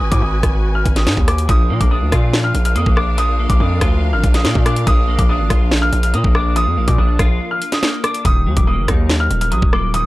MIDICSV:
0, 0, Header, 1, 6, 480
1, 0, Start_track
1, 0, Tempo, 422535
1, 1692, Time_signature, 4, 2, 24, 8
1, 11428, End_track
2, 0, Start_track
2, 0, Title_t, "Grand piano"
2, 0, Program_c, 0, 0
2, 131, Note_on_c, 0, 86, 82
2, 234, Note_off_c, 0, 86, 0
2, 251, Note_on_c, 0, 87, 76
2, 816, Note_off_c, 0, 87, 0
2, 852, Note_on_c, 0, 89, 79
2, 1058, Note_off_c, 0, 89, 0
2, 1093, Note_on_c, 0, 87, 79
2, 1431, Note_off_c, 0, 87, 0
2, 1452, Note_on_c, 0, 86, 89
2, 1657, Note_off_c, 0, 86, 0
2, 1692, Note_on_c, 0, 87, 111
2, 2030, Note_off_c, 0, 87, 0
2, 2052, Note_on_c, 0, 86, 72
2, 2155, Note_off_c, 0, 86, 0
2, 2170, Note_on_c, 0, 87, 82
2, 2735, Note_off_c, 0, 87, 0
2, 2771, Note_on_c, 0, 89, 82
2, 2977, Note_off_c, 0, 89, 0
2, 3012, Note_on_c, 0, 89, 76
2, 3115, Note_off_c, 0, 89, 0
2, 3132, Note_on_c, 0, 87, 82
2, 3337, Note_off_c, 0, 87, 0
2, 3371, Note_on_c, 0, 86, 87
2, 3577, Note_off_c, 0, 86, 0
2, 3613, Note_on_c, 0, 87, 109
2, 3951, Note_off_c, 0, 87, 0
2, 3971, Note_on_c, 0, 86, 81
2, 4074, Note_off_c, 0, 86, 0
2, 4092, Note_on_c, 0, 87, 70
2, 4656, Note_off_c, 0, 87, 0
2, 4692, Note_on_c, 0, 89, 80
2, 4897, Note_off_c, 0, 89, 0
2, 4932, Note_on_c, 0, 87, 75
2, 5270, Note_off_c, 0, 87, 0
2, 5290, Note_on_c, 0, 86, 79
2, 5496, Note_off_c, 0, 86, 0
2, 5531, Note_on_c, 0, 87, 123
2, 5870, Note_off_c, 0, 87, 0
2, 5892, Note_on_c, 0, 86, 77
2, 5995, Note_off_c, 0, 86, 0
2, 6012, Note_on_c, 0, 87, 91
2, 6576, Note_off_c, 0, 87, 0
2, 6612, Note_on_c, 0, 89, 93
2, 6817, Note_off_c, 0, 89, 0
2, 6853, Note_on_c, 0, 89, 75
2, 6955, Note_off_c, 0, 89, 0
2, 6972, Note_on_c, 0, 87, 88
2, 7177, Note_off_c, 0, 87, 0
2, 7212, Note_on_c, 0, 86, 87
2, 7418, Note_off_c, 0, 86, 0
2, 7453, Note_on_c, 0, 87, 119
2, 7791, Note_off_c, 0, 87, 0
2, 7813, Note_on_c, 0, 86, 80
2, 7915, Note_off_c, 0, 86, 0
2, 7932, Note_on_c, 0, 87, 76
2, 8496, Note_off_c, 0, 87, 0
2, 8532, Note_on_c, 0, 89, 78
2, 8737, Note_off_c, 0, 89, 0
2, 8772, Note_on_c, 0, 87, 81
2, 9110, Note_off_c, 0, 87, 0
2, 9133, Note_on_c, 0, 86, 83
2, 9338, Note_off_c, 0, 86, 0
2, 9373, Note_on_c, 0, 87, 116
2, 9711, Note_off_c, 0, 87, 0
2, 9732, Note_on_c, 0, 86, 70
2, 9834, Note_off_c, 0, 86, 0
2, 9852, Note_on_c, 0, 87, 85
2, 10416, Note_off_c, 0, 87, 0
2, 10452, Note_on_c, 0, 89, 90
2, 10657, Note_off_c, 0, 89, 0
2, 10692, Note_on_c, 0, 89, 74
2, 10794, Note_off_c, 0, 89, 0
2, 10812, Note_on_c, 0, 87, 83
2, 11017, Note_off_c, 0, 87, 0
2, 11051, Note_on_c, 0, 86, 84
2, 11257, Note_off_c, 0, 86, 0
2, 11293, Note_on_c, 0, 87, 107
2, 11428, Note_off_c, 0, 87, 0
2, 11428, End_track
3, 0, Start_track
3, 0, Title_t, "String section"
3, 0, Program_c, 1, 48
3, 0, Note_on_c, 1, 66, 85
3, 0, Note_on_c, 1, 71, 78
3, 0, Note_on_c, 1, 80, 91
3, 1653, Note_off_c, 1, 80, 0
3, 1654, Note_off_c, 1, 66, 0
3, 1654, Note_off_c, 1, 71, 0
3, 1692, Note_on_c, 1, 62, 81
3, 1692, Note_on_c, 1, 70, 75
3, 1692, Note_on_c, 1, 77, 89
3, 9327, Note_off_c, 1, 62, 0
3, 9327, Note_off_c, 1, 70, 0
3, 9327, Note_off_c, 1, 77, 0
3, 11428, End_track
4, 0, Start_track
4, 0, Title_t, "Clean electric guitar"
4, 0, Program_c, 2, 27
4, 1694, Note_on_c, 2, 53, 95
4, 1933, Note_on_c, 2, 58, 81
4, 2172, Note_on_c, 2, 62, 85
4, 2406, Note_on_c, 2, 65, 88
4, 2893, Note_off_c, 2, 53, 0
4, 3116, Note_off_c, 2, 58, 0
4, 3129, Note_on_c, 2, 58, 90
4, 3348, Note_off_c, 2, 62, 0
4, 3362, Note_on_c, 2, 62, 91
4, 3604, Note_on_c, 2, 53, 101
4, 3609, Note_off_c, 2, 65, 0
4, 3840, Note_off_c, 2, 58, 0
4, 3854, Note_on_c, 2, 58, 82
4, 4081, Note_off_c, 2, 62, 0
4, 4095, Note_on_c, 2, 62, 84
4, 4333, Note_on_c, 2, 65, 84
4, 4808, Note_off_c, 2, 53, 0
4, 5034, Note_off_c, 2, 58, 0
4, 5048, Note_on_c, 2, 58, 83
4, 5284, Note_off_c, 2, 62, 0
4, 5298, Note_on_c, 2, 62, 92
4, 5526, Note_on_c, 2, 53, 86
4, 5533, Note_off_c, 2, 65, 0
4, 5755, Note_off_c, 2, 58, 0
4, 5768, Note_on_c, 2, 58, 88
4, 6008, Note_off_c, 2, 62, 0
4, 6021, Note_on_c, 2, 62, 98
4, 6246, Note_on_c, 2, 65, 87
4, 6729, Note_off_c, 2, 53, 0
4, 6966, Note_off_c, 2, 58, 0
4, 6980, Note_on_c, 2, 58, 85
4, 7206, Note_off_c, 2, 62, 0
4, 7220, Note_on_c, 2, 62, 83
4, 7449, Note_off_c, 2, 65, 0
4, 7449, Note_on_c, 2, 53, 99
4, 7682, Note_off_c, 2, 58, 0
4, 7695, Note_on_c, 2, 58, 81
4, 7921, Note_off_c, 2, 62, 0
4, 7934, Note_on_c, 2, 62, 88
4, 8171, Note_on_c, 2, 65, 90
4, 8650, Note_off_c, 2, 53, 0
4, 8879, Note_off_c, 2, 58, 0
4, 8893, Note_on_c, 2, 58, 82
4, 9115, Note_off_c, 2, 62, 0
4, 9129, Note_on_c, 2, 62, 87
4, 9367, Note_on_c, 2, 51, 95
4, 9370, Note_off_c, 2, 62, 0
4, 9371, Note_off_c, 2, 65, 0
4, 9372, Note_off_c, 2, 58, 0
4, 9617, Note_on_c, 2, 54, 85
4, 9855, Note_on_c, 2, 58, 93
4, 10088, Note_on_c, 2, 63, 85
4, 10569, Note_off_c, 2, 51, 0
4, 10793, Note_off_c, 2, 54, 0
4, 10807, Note_on_c, 2, 54, 83
4, 11039, Note_off_c, 2, 58, 0
4, 11052, Note_on_c, 2, 58, 85
4, 11290, Note_off_c, 2, 63, 0
4, 11291, Note_on_c, 2, 51, 100
4, 11428, Note_off_c, 2, 51, 0
4, 11428, Note_off_c, 2, 54, 0
4, 11428, Note_off_c, 2, 58, 0
4, 11428, End_track
5, 0, Start_track
5, 0, Title_t, "808-style bass"
5, 0, Program_c, 3, 38
5, 11, Note_on_c, 3, 32, 98
5, 126, Note_off_c, 3, 32, 0
5, 132, Note_on_c, 3, 44, 104
5, 244, Note_off_c, 3, 44, 0
5, 251, Note_on_c, 3, 32, 107
5, 482, Note_off_c, 3, 32, 0
5, 491, Note_on_c, 3, 32, 108
5, 952, Note_off_c, 3, 32, 0
5, 972, Note_on_c, 3, 32, 112
5, 1211, Note_on_c, 3, 44, 102
5, 1228, Note_off_c, 3, 32, 0
5, 1326, Note_off_c, 3, 44, 0
5, 1332, Note_on_c, 3, 39, 98
5, 1678, Note_off_c, 3, 39, 0
5, 1692, Note_on_c, 3, 34, 111
5, 1932, Note_on_c, 3, 46, 103
5, 1949, Note_off_c, 3, 34, 0
5, 2046, Note_off_c, 3, 46, 0
5, 2052, Note_on_c, 3, 34, 107
5, 2292, Note_on_c, 3, 38, 104
5, 2309, Note_off_c, 3, 34, 0
5, 2406, Note_off_c, 3, 38, 0
5, 2411, Note_on_c, 3, 46, 109
5, 2872, Note_off_c, 3, 46, 0
5, 2892, Note_on_c, 3, 34, 109
5, 3131, Note_on_c, 3, 41, 102
5, 3148, Note_off_c, 3, 34, 0
5, 3246, Note_off_c, 3, 41, 0
5, 3252, Note_on_c, 3, 34, 97
5, 3943, Note_off_c, 3, 34, 0
5, 3972, Note_on_c, 3, 34, 102
5, 4084, Note_off_c, 3, 34, 0
5, 4091, Note_on_c, 3, 41, 107
5, 4322, Note_off_c, 3, 41, 0
5, 4332, Note_on_c, 3, 38, 113
5, 4692, Note_on_c, 3, 32, 104
5, 4709, Note_off_c, 3, 38, 0
5, 4806, Note_off_c, 3, 32, 0
5, 4812, Note_on_c, 3, 34, 110
5, 5052, Note_on_c, 3, 46, 100
5, 5069, Note_off_c, 3, 34, 0
5, 5166, Note_off_c, 3, 46, 0
5, 5172, Note_on_c, 3, 46, 98
5, 5518, Note_off_c, 3, 46, 0
5, 5532, Note_on_c, 3, 34, 119
5, 5878, Note_off_c, 3, 34, 0
5, 5892, Note_on_c, 3, 34, 108
5, 6133, Note_on_c, 3, 32, 103
5, 6150, Note_off_c, 3, 34, 0
5, 6247, Note_off_c, 3, 32, 0
5, 6252, Note_on_c, 3, 34, 109
5, 6713, Note_off_c, 3, 34, 0
5, 6732, Note_on_c, 3, 34, 109
5, 6972, Note_on_c, 3, 46, 104
5, 6989, Note_off_c, 3, 34, 0
5, 7086, Note_off_c, 3, 46, 0
5, 7092, Note_on_c, 3, 34, 107
5, 7573, Note_on_c, 3, 41, 100
5, 7590, Note_off_c, 3, 34, 0
5, 7693, Note_on_c, 3, 34, 100
5, 7710, Note_off_c, 3, 41, 0
5, 7806, Note_off_c, 3, 34, 0
5, 7812, Note_on_c, 3, 46, 102
5, 7927, Note_off_c, 3, 46, 0
5, 7933, Note_on_c, 3, 34, 110
5, 8163, Note_off_c, 3, 34, 0
5, 8171, Note_on_c, 3, 34, 108
5, 8402, Note_off_c, 3, 34, 0
5, 9372, Note_on_c, 3, 27, 111
5, 9612, Note_on_c, 3, 39, 102
5, 9629, Note_off_c, 3, 27, 0
5, 9726, Note_off_c, 3, 39, 0
5, 9732, Note_on_c, 3, 27, 108
5, 9971, Note_on_c, 3, 30, 100
5, 9989, Note_off_c, 3, 27, 0
5, 10086, Note_off_c, 3, 30, 0
5, 10091, Note_on_c, 3, 39, 106
5, 10552, Note_off_c, 3, 39, 0
5, 10572, Note_on_c, 3, 27, 111
5, 10811, Note_on_c, 3, 34, 103
5, 10828, Note_off_c, 3, 27, 0
5, 10925, Note_off_c, 3, 34, 0
5, 10932, Note_on_c, 3, 27, 97
5, 11428, Note_off_c, 3, 27, 0
5, 11428, End_track
6, 0, Start_track
6, 0, Title_t, "Drums"
6, 132, Note_on_c, 9, 36, 89
6, 132, Note_on_c, 9, 42, 82
6, 245, Note_off_c, 9, 36, 0
6, 246, Note_off_c, 9, 42, 0
6, 491, Note_on_c, 9, 36, 97
6, 491, Note_on_c, 9, 37, 99
6, 492, Note_on_c, 9, 42, 83
6, 604, Note_off_c, 9, 37, 0
6, 605, Note_off_c, 9, 36, 0
6, 605, Note_off_c, 9, 42, 0
6, 972, Note_on_c, 9, 36, 90
6, 972, Note_on_c, 9, 42, 71
6, 1085, Note_off_c, 9, 42, 0
6, 1086, Note_off_c, 9, 36, 0
6, 1092, Note_on_c, 9, 42, 83
6, 1093, Note_on_c, 9, 38, 71
6, 1205, Note_off_c, 9, 42, 0
6, 1206, Note_off_c, 9, 38, 0
6, 1212, Note_on_c, 9, 38, 110
6, 1212, Note_on_c, 9, 42, 65
6, 1326, Note_off_c, 9, 38, 0
6, 1326, Note_off_c, 9, 42, 0
6, 1332, Note_on_c, 9, 36, 98
6, 1446, Note_off_c, 9, 36, 0
6, 1452, Note_on_c, 9, 37, 103
6, 1452, Note_on_c, 9, 42, 92
6, 1565, Note_off_c, 9, 42, 0
6, 1566, Note_off_c, 9, 37, 0
6, 1572, Note_on_c, 9, 42, 73
6, 1685, Note_off_c, 9, 42, 0
6, 1692, Note_on_c, 9, 36, 111
6, 1692, Note_on_c, 9, 42, 83
6, 1805, Note_off_c, 9, 42, 0
6, 1806, Note_off_c, 9, 36, 0
6, 2052, Note_on_c, 9, 36, 90
6, 2052, Note_on_c, 9, 42, 80
6, 2165, Note_off_c, 9, 36, 0
6, 2166, Note_off_c, 9, 42, 0
6, 2411, Note_on_c, 9, 36, 98
6, 2411, Note_on_c, 9, 37, 100
6, 2412, Note_on_c, 9, 42, 81
6, 2525, Note_off_c, 9, 36, 0
6, 2525, Note_off_c, 9, 37, 0
6, 2526, Note_off_c, 9, 42, 0
6, 2652, Note_on_c, 9, 38, 119
6, 2765, Note_off_c, 9, 38, 0
6, 2892, Note_on_c, 9, 42, 70
6, 3006, Note_off_c, 9, 42, 0
6, 3012, Note_on_c, 9, 42, 81
6, 3125, Note_off_c, 9, 42, 0
6, 3132, Note_on_c, 9, 42, 64
6, 3246, Note_off_c, 9, 42, 0
6, 3252, Note_on_c, 9, 36, 99
6, 3366, Note_off_c, 9, 36, 0
6, 3373, Note_on_c, 9, 37, 103
6, 3487, Note_off_c, 9, 37, 0
6, 3612, Note_on_c, 9, 42, 86
6, 3726, Note_off_c, 9, 42, 0
6, 3972, Note_on_c, 9, 36, 92
6, 3972, Note_on_c, 9, 42, 82
6, 4086, Note_off_c, 9, 36, 0
6, 4086, Note_off_c, 9, 42, 0
6, 4331, Note_on_c, 9, 36, 97
6, 4331, Note_on_c, 9, 37, 104
6, 4332, Note_on_c, 9, 42, 81
6, 4445, Note_off_c, 9, 36, 0
6, 4445, Note_off_c, 9, 37, 0
6, 4446, Note_off_c, 9, 42, 0
6, 4812, Note_on_c, 9, 36, 90
6, 4812, Note_on_c, 9, 42, 70
6, 4926, Note_off_c, 9, 36, 0
6, 4926, Note_off_c, 9, 42, 0
6, 4932, Note_on_c, 9, 42, 82
6, 4933, Note_on_c, 9, 38, 75
6, 5046, Note_off_c, 9, 42, 0
6, 5047, Note_off_c, 9, 38, 0
6, 5052, Note_on_c, 9, 38, 104
6, 5052, Note_on_c, 9, 42, 65
6, 5166, Note_off_c, 9, 38, 0
6, 5166, Note_off_c, 9, 42, 0
6, 5172, Note_on_c, 9, 36, 97
6, 5286, Note_off_c, 9, 36, 0
6, 5292, Note_on_c, 9, 42, 90
6, 5293, Note_on_c, 9, 37, 101
6, 5406, Note_off_c, 9, 42, 0
6, 5407, Note_off_c, 9, 37, 0
6, 5412, Note_on_c, 9, 42, 70
6, 5526, Note_off_c, 9, 42, 0
6, 5532, Note_on_c, 9, 36, 115
6, 5532, Note_on_c, 9, 42, 85
6, 5645, Note_off_c, 9, 42, 0
6, 5646, Note_off_c, 9, 36, 0
6, 5892, Note_on_c, 9, 36, 91
6, 5892, Note_on_c, 9, 42, 81
6, 6006, Note_off_c, 9, 36, 0
6, 6006, Note_off_c, 9, 42, 0
6, 6251, Note_on_c, 9, 36, 99
6, 6251, Note_on_c, 9, 37, 102
6, 6252, Note_on_c, 9, 42, 84
6, 6364, Note_off_c, 9, 37, 0
6, 6365, Note_off_c, 9, 36, 0
6, 6365, Note_off_c, 9, 42, 0
6, 6492, Note_on_c, 9, 38, 115
6, 6606, Note_off_c, 9, 38, 0
6, 6732, Note_on_c, 9, 42, 72
6, 6846, Note_off_c, 9, 42, 0
6, 6852, Note_on_c, 9, 42, 82
6, 6966, Note_off_c, 9, 42, 0
6, 6972, Note_on_c, 9, 42, 68
6, 7086, Note_off_c, 9, 42, 0
6, 7092, Note_on_c, 9, 36, 100
6, 7206, Note_off_c, 9, 36, 0
6, 7213, Note_on_c, 9, 37, 103
6, 7326, Note_off_c, 9, 37, 0
6, 7452, Note_on_c, 9, 42, 80
6, 7566, Note_off_c, 9, 42, 0
6, 7812, Note_on_c, 9, 36, 89
6, 7812, Note_on_c, 9, 42, 80
6, 7925, Note_off_c, 9, 36, 0
6, 7926, Note_off_c, 9, 42, 0
6, 8171, Note_on_c, 9, 36, 97
6, 8171, Note_on_c, 9, 37, 103
6, 8172, Note_on_c, 9, 42, 83
6, 8284, Note_off_c, 9, 37, 0
6, 8285, Note_off_c, 9, 36, 0
6, 8286, Note_off_c, 9, 42, 0
6, 8652, Note_on_c, 9, 42, 69
6, 8766, Note_off_c, 9, 42, 0
6, 8772, Note_on_c, 9, 42, 83
6, 8773, Note_on_c, 9, 38, 71
6, 8886, Note_off_c, 9, 42, 0
6, 8887, Note_off_c, 9, 38, 0
6, 8892, Note_on_c, 9, 38, 103
6, 8892, Note_on_c, 9, 42, 66
6, 9006, Note_off_c, 9, 38, 0
6, 9006, Note_off_c, 9, 42, 0
6, 9132, Note_on_c, 9, 42, 88
6, 9133, Note_on_c, 9, 37, 101
6, 9246, Note_off_c, 9, 37, 0
6, 9246, Note_off_c, 9, 42, 0
6, 9252, Note_on_c, 9, 42, 69
6, 9366, Note_off_c, 9, 42, 0
6, 9372, Note_on_c, 9, 36, 113
6, 9372, Note_on_c, 9, 42, 82
6, 9485, Note_off_c, 9, 36, 0
6, 9485, Note_off_c, 9, 42, 0
6, 9731, Note_on_c, 9, 36, 92
6, 9732, Note_on_c, 9, 42, 85
6, 9845, Note_off_c, 9, 36, 0
6, 9845, Note_off_c, 9, 42, 0
6, 10091, Note_on_c, 9, 36, 97
6, 10091, Note_on_c, 9, 37, 99
6, 10092, Note_on_c, 9, 42, 83
6, 10204, Note_off_c, 9, 37, 0
6, 10205, Note_off_c, 9, 36, 0
6, 10205, Note_off_c, 9, 42, 0
6, 10332, Note_on_c, 9, 38, 118
6, 10445, Note_off_c, 9, 38, 0
6, 10572, Note_on_c, 9, 42, 70
6, 10685, Note_off_c, 9, 42, 0
6, 10692, Note_on_c, 9, 42, 81
6, 10806, Note_off_c, 9, 42, 0
6, 10812, Note_on_c, 9, 42, 66
6, 10925, Note_off_c, 9, 42, 0
6, 10932, Note_on_c, 9, 36, 99
6, 11046, Note_off_c, 9, 36, 0
6, 11052, Note_on_c, 9, 37, 103
6, 11166, Note_off_c, 9, 37, 0
6, 11292, Note_on_c, 9, 42, 86
6, 11406, Note_off_c, 9, 42, 0
6, 11428, End_track
0, 0, End_of_file